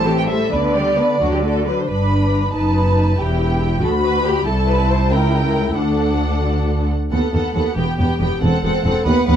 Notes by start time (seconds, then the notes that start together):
Already playing: A1 A2 A5
0.05 E3 C4 G4 A4
0.18 G5
0.28 G3 E4 A4 C5 E5
0.51 D2 D3 B3 D4 B4 D5
0.75 G3 B3 G4 D5
0.98 B3 D4 B4
1.21 D2 D3 F#3 D4 F#4
1.32 G4
1.43 A3 F#4 A4
1.66 F#3 D4 B4
1.80 C5
1.89 G1 G2 D4 B4 B5
2.54 F#1 F#2 D#4 B4 A5
3.19 E1 E2 E4 G4 G5
3.83 D2 F#4 A4 B5
4.05 B4
4.26 G4
4.47 C2 E4 A4 A5
4.69 B4
4.91 C5
5.12 C#2 A#4 G5
5.77 D2 D4 A4 F#5
7.12 D#2 B3 A4 F#5
7.33 D#2 B3 A4 F#5
7.55 D#2 B3 A4 F#5
7.76 E1 E2 B3 G4 G5
7.99 E1 E2 B3 G4 G5
8.20 E1 E2 B3 G4 G5
8.42 E1 E2 C4 A4 F#5
8.64 E1 E2 C4 A4 F#5
8.85 E1 E2 C4 A4 F#5
9.06 D#2 B3 B4 F#5
9.27 D#2 B3 B4 F#5